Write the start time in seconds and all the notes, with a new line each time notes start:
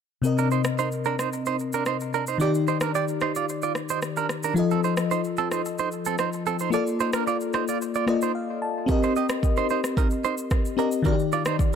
0.22 C3 C4 A#4, shaker
0.27 D#5
0.38 D4 A#4, shaker
0.51 D#4 C5, shaker
0.64 cross-stick, shaker
0.78 D#4 C5, shaker
0.92 shaker
1.04 D4 A#4, shaker
1.19 D#4 C5, cross-stick, shaker
1.33 shaker
1.46 D#4 C5, shaker
1.59 shaker
1.73 D4 A#4, shaker
1.86 D#4 C5, cross-stick, shaker
2.00 shaker
2.14 D4 A#4, shaker
2.27 D#4 C5, shaker
2.38 D#3 D#4 G4 D5, shaker
2.42 G4 D5
2.54 shaker
2.67 D#4 C5, shaker
2.81 D4 A#4, cross-stick, shaker
2.95 G4 D5, shaker
3.08 shaker
3.21 D#4 C5, cross-stick, shaker
3.35 F4 D5, shaker
3.49 shaker
3.62 F4 D5, shaker
3.75 cross-stick, shaker
3.89 D#4 C5, shaker
4.02 cross-stick, shaker
4.17 D4 A#4, shaker
4.29 cross-stick, shaker
4.43 D4 A#4, shaker
4.54 F3 F4 A4, shaker
4.59 D#5
4.71 C4 A4, shaker
4.84 D#4 C5, shaker
4.97 cross-stick, shaker
5.11 D#4 C5, shaker
5.24 shaker
5.37 C4 A4, shaker
5.51 D#4 C5, cross-stick, shaker
5.65 shaker
5.78 D#4 C5, shaker
5.92 shaker
6.05 C4 A4, shaker
6.18 D#4 C5, cross-stick, shaker
6.33 shaker
6.46 C4 A4, shaker
6.59 D#4 C5, shaker
6.70 A#3 F4 A4 D5, shaker
6.75 F4 D5
6.87 shaker
7.00 D#4 C5, shaker
7.13 D4 A#4, cross-stick, shaker
7.27 F4 D5, shaker
7.41 shaker
7.53 D#4 C5, cross-stick, shaker
7.68 F4 D5, shaker
7.82 shaker
7.94 F4 D5, shaker
8.07 A#3 F4 A4 D5 D#5, cross-stick, shaker
8.22 D#4 C5, shaker
8.35 F5
8.62 A5
8.86 C4 G4 A#4, kick, shaker
8.91 D#5
9.03 D#4 C5, shaker
9.16 G4 D#5, shaker
9.29 cross-stick, shaker
9.43 kick, shaker
9.57 D#4 C5, shaker
9.69 D#4 C5, shaker
9.84 cross-stick, shaker
9.97 D#4 A#4, kick, shaker
10.11 shaker
10.24 D#4 C5, shaker
10.38 shaker
10.51 kick, cross-stick, shaker
10.65 shaker
10.77 C4 D4 G4 A#4 D#5, shaker
10.92 shaker
11.02 D#3 D#4 F#4 A#4, kick, shaker
11.07 D4 D5
11.12 G4
11.19 shaker
11.32 F4 D5, shaker
11.45 D#4 C5, cross-stick, shaker
11.59 kick, shaker